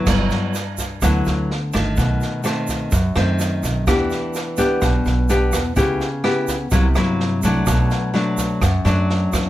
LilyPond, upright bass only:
\new Staff \with { instrumentName = "Upright bass" } { \clef bass \time 4/4 \key g \major \tempo 4 = 126 g,,8 r4. d,8 d,4 g,,8 | b,,8 r4. fis,8 fis,4 b,,8 | e,8 r4. b,,8 b,,4 e,8 | cis,8 r4. c,8 g,4 c,8 |
b,,8 r4. fis,8 fis,4 e,8 | }